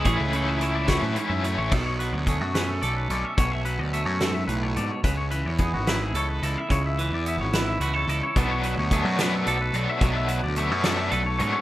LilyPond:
<<
  \new Staff \with { instrumentName = "Clean electric guitar" } { \time 6/8 \key b \dorian \tempo 4. = 72 cis''16 b'16 a'16 b'16 cis''16 d''16 cis''16 b'16 cis''16 e''16 cis''16 cis''16 | a'16 cis''16 b'16 cis''16 gis'16 fis'16 b'16 a'16 d''16 b'16 d''16 e''16 | cis''16 e''16 b'16 d''16 e''16 cis''16 a'16 e''16 b'16 cis''16 d''16 cis''16 | b'16 cis''16 b'16 cis''16 gis'16 fis'16 b'16 gis'16 cis''16 b'16 d''16 e''16 |
cis''16 e''16 b'16 d''16 e''16 cis''16 b'16 e''16 b'16 cis''16 d''16 cis''16 | a'16 cis''16 b'16 cis''16 gis'16 fis'16 b'16 a'16 d''16 b'16 d''16 e''16 | cis''16 e''16 b'16 d''16 e''16 cis''16 a'16 e''16 b'16 cis''16 d''16 cis''16 | }
  \new Staff \with { instrumentName = "Overdriven electric guitar" } { \time 6/8 \key b \dorian <a, e a cis' e'>8 <a cis' e'>4 <a, e a cis' e'>8 <e a cis' e'>8 <a cis' e'>8 | r2. | r2. | r2. |
r2. | <b, fis b d'>8 r8 <b, fis b d'>8 <b, fis b d'>8 r8 <b, fis b d'>8 | <b, fis b d'>8 r8 <b, fis b d'>8 <b, fis b d'>8 r8 <b, fis b d'>8 | }
  \new Staff \with { instrumentName = "Clean electric guitar" } { \time 6/8 \key b \dorian << { gis'8 cis'8 e'2 | r4 a8 cis'8 a'8 cis'8~ | cis'4 a2 | r4 b8 e'8 a'8 e'8 |
r4 b8 e'8 fis'16 a'16 e'8 | r4 a4 a'4 | r4 a4 a'8 cis'8 | } \\ { a,4. fis,8 gis,8 a,8 | b,8 fis2~ fis8 | b,8 fis4 gis,8 a,8 b,8 | cis8 e2~ e8 |
cis8 e2~ e8 | b,8 fis2~ fis8 | b,8 fis2~ fis8 | } >> }
  \new Staff \with { instrumentName = "Picked electric bass" } { \clef bass \time 6/8 \key b \dorian a,,16 cis,4. a,16 r16 fis,8 a,,16 | b,,8. d,8 fis,8. b,,8 b,,16 r16 | b,,8. d,8 fis,8. b,,8 gis,16 r16 | cis,8. e,8 gis,,8. cis,8 cis,16 r16 |
cis,8. e,8 gis,,8. cis,8 cis,16 r16 | b,,8. d,8 fis,8. b,,8 b,,16 r16 | b,,8. d,8 fis,8. b,,8 gis,16 r16 | }
  \new DrumStaff \with { instrumentName = "Drums" } \drummode { \time 6/8 <hh bd>8 hh8 hh8 <hh bd sn>8 hh8 hh8 | <cymc bd>8 hh8 <hh bd>8 <hh sn>8 hh8 hh8 | <hh bd>8 hh8 hh8 <hh sn>8 hh8 hh8 | <hh bd>8 hh8 <hh bd>8 <hh sn>8 hh8 hh8 |
<hh bd>8 hh8 hh8 <hh sn>8 hh8 hh8 | <hh bd>8 hh8 <hh bd>8 <hh sn>8 hh8 hh8 | <hh bd>8 hh8 hh8 <hh sn>8 hh8 hh8 | }
>>